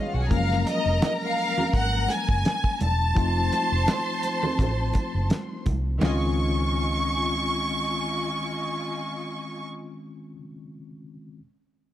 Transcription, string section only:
0, 0, Header, 1, 2, 480
1, 0, Start_track
1, 0, Key_signature, -5, "major"
1, 0, Tempo, 714031
1, 207, Time_signature, 4, 2, 24, 8
1, 8023, End_track
2, 0, Start_track
2, 0, Title_t, "String section"
2, 0, Program_c, 0, 48
2, 20, Note_on_c, 0, 77, 78
2, 24, Note_on_c, 0, 65, 69
2, 88, Note_on_c, 0, 66, 75
2, 91, Note_off_c, 0, 77, 0
2, 91, Note_on_c, 0, 78, 84
2, 93, Note_off_c, 0, 65, 0
2, 142, Note_on_c, 0, 68, 80
2, 142, Note_on_c, 0, 80, 94
2, 148, Note_off_c, 0, 66, 0
2, 149, Note_off_c, 0, 78, 0
2, 197, Note_on_c, 0, 70, 91
2, 199, Note_on_c, 0, 82, 100
2, 202, Note_off_c, 0, 68, 0
2, 202, Note_off_c, 0, 80, 0
2, 1856, Note_off_c, 0, 70, 0
2, 1857, Note_off_c, 0, 82, 0
2, 2120, Note_on_c, 0, 84, 95
2, 2122, Note_on_c, 0, 72, 92
2, 3778, Note_off_c, 0, 84, 0
2, 3779, Note_off_c, 0, 72, 0
2, 4044, Note_on_c, 0, 65, 77
2, 4044, Note_on_c, 0, 75, 78
2, 4045, Note_on_c, 0, 80, 82
2, 6478, Note_off_c, 0, 65, 0
2, 6479, Note_off_c, 0, 75, 0
2, 6479, Note_off_c, 0, 80, 0
2, 8023, End_track
0, 0, End_of_file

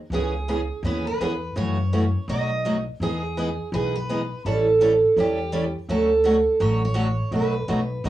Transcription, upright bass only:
0, 0, Header, 1, 2, 480
1, 0, Start_track
1, 0, Key_signature, 4, "minor"
1, 0, Tempo, 360577
1, 153, Time_signature, 4, 2, 24, 8
1, 10771, End_track
2, 0, Start_track
2, 0, Title_t, "Upright bass"
2, 0, Program_c, 0, 32
2, 132, Note_on_c, 0, 37, 77
2, 909, Note_off_c, 0, 37, 0
2, 1099, Note_on_c, 0, 39, 92
2, 1514, Note_off_c, 0, 39, 0
2, 1599, Note_on_c, 0, 40, 87
2, 2006, Note_off_c, 0, 40, 0
2, 2075, Note_on_c, 0, 42, 81
2, 2844, Note_off_c, 0, 42, 0
2, 3029, Note_on_c, 0, 35, 92
2, 3801, Note_off_c, 0, 35, 0
2, 3992, Note_on_c, 0, 40, 78
2, 4763, Note_off_c, 0, 40, 0
2, 4951, Note_on_c, 0, 35, 85
2, 5722, Note_off_c, 0, 35, 0
2, 5921, Note_on_c, 0, 33, 72
2, 6688, Note_off_c, 0, 33, 0
2, 6877, Note_on_c, 0, 40, 87
2, 7645, Note_off_c, 0, 40, 0
2, 7837, Note_on_c, 0, 38, 78
2, 8604, Note_off_c, 0, 38, 0
2, 8792, Note_on_c, 0, 33, 87
2, 9560, Note_off_c, 0, 33, 0
2, 9739, Note_on_c, 0, 35, 85
2, 10129, Note_off_c, 0, 35, 0
2, 10227, Note_on_c, 0, 35, 83
2, 10637, Note_off_c, 0, 35, 0
2, 10702, Note_on_c, 0, 37, 91
2, 10771, Note_off_c, 0, 37, 0
2, 10771, End_track
0, 0, End_of_file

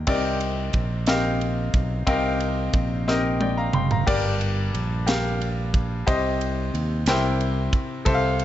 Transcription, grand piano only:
0, 0, Header, 1, 2, 480
1, 0, Start_track
1, 0, Tempo, 665188
1, 56, Time_signature, 6, 3, 24, 8
1, 6095, End_track
2, 0, Start_track
2, 0, Title_t, "Grand piano"
2, 0, Program_c, 0, 0
2, 0, Control_c, 0, 64, 127
2, 51, Note_on_c, 0, 60, 95
2, 52, Note_on_c, 0, 67, 79
2, 57, Note_on_c, 0, 63, 83
2, 58, Note_on_c, 0, 48, 68
2, 60, Note_on_c, 0, 74, 97
2, 63, Note_on_c, 0, 70, 84
2, 65, Control_c, 0, 64, 0
2, 187, Control_c, 0, 64, 127
2, 642, Note_off_c, 0, 60, 0
2, 643, Note_off_c, 0, 67, 0
2, 645, Note_off_c, 0, 63, 0
2, 647, Note_off_c, 0, 74, 0
2, 648, Note_off_c, 0, 70, 0
2, 748, Note_off_c, 0, 48, 0
2, 774, Note_on_c, 0, 60, 78
2, 775, Note_on_c, 0, 63, 77
2, 781, Note_on_c, 0, 67, 75
2, 782, Note_on_c, 0, 70, 76
2, 784, Note_on_c, 0, 77, 93
2, 1364, Note_off_c, 0, 60, 0
2, 1364, Note_off_c, 0, 63, 0
2, 1367, Note_off_c, 0, 67, 0
2, 1368, Note_off_c, 0, 70, 0
2, 1369, Note_off_c, 0, 77, 0
2, 1491, Note_on_c, 0, 60, 99
2, 1496, Note_on_c, 0, 63, 89
2, 1498, Note_on_c, 0, 67, 86
2, 1498, Note_on_c, 0, 70, 91
2, 1500, Note_on_c, 0, 48, 74
2, 1506, Note_on_c, 0, 77, 109
2, 2082, Note_off_c, 0, 60, 0
2, 2085, Note_off_c, 0, 63, 0
2, 2086, Note_off_c, 0, 67, 0
2, 2086, Note_off_c, 0, 70, 0
2, 2089, Note_off_c, 0, 77, 0
2, 2188, Note_off_c, 0, 48, 0
2, 2220, Note_on_c, 0, 63, 81
2, 2222, Note_on_c, 0, 67, 70
2, 2223, Note_on_c, 0, 60, 80
2, 2228, Note_on_c, 0, 70, 75
2, 2230, Note_on_c, 0, 75, 90
2, 2455, Note_on_c, 0, 79, 60
2, 2462, Note_off_c, 0, 75, 0
2, 2465, Note_on_c, 0, 74, 46
2, 2569, Note_off_c, 0, 79, 0
2, 2574, Note_off_c, 0, 74, 0
2, 2579, Note_on_c, 0, 82, 66
2, 2583, Note_on_c, 0, 77, 60
2, 2691, Note_off_c, 0, 82, 0
2, 2693, Note_off_c, 0, 77, 0
2, 2700, Note_on_c, 0, 84, 63
2, 2702, Note_on_c, 0, 79, 54
2, 2807, Note_off_c, 0, 63, 0
2, 2808, Note_off_c, 0, 60, 0
2, 2808, Note_off_c, 0, 67, 0
2, 2810, Note_off_c, 0, 70, 0
2, 2811, Note_off_c, 0, 84, 0
2, 2812, Note_off_c, 0, 79, 0
2, 2823, Note_on_c, 0, 82, 62
2, 2829, Note_on_c, 0, 77, 55
2, 2933, Note_on_c, 0, 67, 88
2, 2935, Note_on_c, 0, 70, 84
2, 2936, Note_on_c, 0, 43, 73
2, 2942, Note_on_c, 0, 74, 101
2, 2944, Control_c, 0, 64, 0
2, 3047, Note_off_c, 0, 82, 0
2, 3050, Note_off_c, 0, 77, 0
2, 3071, Control_c, 0, 64, 127
2, 3523, Note_off_c, 0, 67, 0
2, 3524, Note_off_c, 0, 70, 0
2, 3527, Note_off_c, 0, 74, 0
2, 3626, Note_off_c, 0, 43, 0
2, 3654, Note_on_c, 0, 67, 81
2, 3657, Note_on_c, 0, 70, 74
2, 3661, Note_on_c, 0, 77, 83
2, 4244, Note_off_c, 0, 67, 0
2, 4245, Note_off_c, 0, 70, 0
2, 4247, Note_off_c, 0, 77, 0
2, 4377, Note_on_c, 0, 67, 95
2, 4381, Note_on_c, 0, 72, 79
2, 4382, Note_on_c, 0, 48, 72
2, 4383, Control_c, 0, 64, 0
2, 4384, Note_on_c, 0, 75, 104
2, 4494, Control_c, 0, 64, 127
2, 4965, Note_off_c, 0, 67, 0
2, 4967, Note_off_c, 0, 72, 0
2, 4969, Note_off_c, 0, 75, 0
2, 5069, Note_off_c, 0, 48, 0
2, 5104, Control_c, 0, 64, 0
2, 5105, Note_on_c, 0, 64, 80
2, 5106, Note_on_c, 0, 67, 76
2, 5106, Note_on_c, 0, 70, 75
2, 5112, Note_on_c, 0, 48, 77
2, 5112, Note_on_c, 0, 72, 78
2, 5119, Note_on_c, 0, 79, 92
2, 5227, Control_c, 0, 64, 127
2, 5689, Note_off_c, 0, 64, 0
2, 5690, Note_off_c, 0, 67, 0
2, 5690, Note_off_c, 0, 70, 0
2, 5693, Note_off_c, 0, 72, 0
2, 5697, Note_off_c, 0, 79, 0
2, 5794, Note_off_c, 0, 48, 0
2, 5810, Note_on_c, 0, 69, 95
2, 5819, Note_on_c, 0, 72, 87
2, 5821, Note_on_c, 0, 48, 79
2, 5823, Control_c, 0, 64, 0
2, 5829, Note_on_c, 0, 76, 83
2, 5869, Note_off_c, 0, 76, 0
2, 5876, Note_on_c, 0, 77, 112
2, 5969, Control_c, 0, 64, 127
2, 6095, Note_off_c, 0, 48, 0
2, 6095, Note_off_c, 0, 69, 0
2, 6095, Note_off_c, 0, 72, 0
2, 6095, Note_off_c, 0, 77, 0
2, 6095, End_track
0, 0, End_of_file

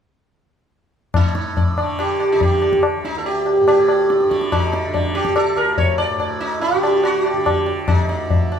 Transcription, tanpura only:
0, 0, Header, 1, 2, 480
1, 0, Start_track
1, 0, Tempo, 421941
1, 1290, Time_signature, 4, 2, 24, 8
1, 9775, End_track
2, 0, Start_track
2, 0, Title_t, "Tanpura"
2, 0, Program_c, 0, 104
2, 1294, Note_on_c, 0, 45, 54
2, 1984, Note_on_c, 0, 50, 52
2, 2675, Note_off_c, 0, 50, 0
2, 2675, Note_on_c, 0, 50, 53
2, 3399, Note_on_c, 0, 38, 53
2, 4104, Note_off_c, 0, 45, 0
2, 4109, Note_on_c, 0, 45, 56
2, 4818, Note_off_c, 0, 50, 0
2, 4818, Note_on_c, 0, 50, 58
2, 5527, Note_off_c, 0, 50, 0
2, 5527, Note_on_c, 0, 50, 61
2, 6212, Note_off_c, 0, 38, 0
2, 6216, Note_on_c, 0, 38, 58
2, 6932, Note_off_c, 0, 45, 0
2, 6936, Note_on_c, 0, 45, 60
2, 7644, Note_off_c, 0, 50, 0
2, 7644, Note_on_c, 0, 50, 51
2, 8342, Note_off_c, 0, 50, 0
2, 8342, Note_on_c, 0, 50, 51
2, 9033, Note_off_c, 0, 38, 0
2, 9038, Note_on_c, 0, 38, 57
2, 9739, Note_off_c, 0, 45, 0
2, 9775, Note_off_c, 0, 38, 0
2, 9775, Note_off_c, 0, 50, 0
2, 9775, End_track
0, 0, End_of_file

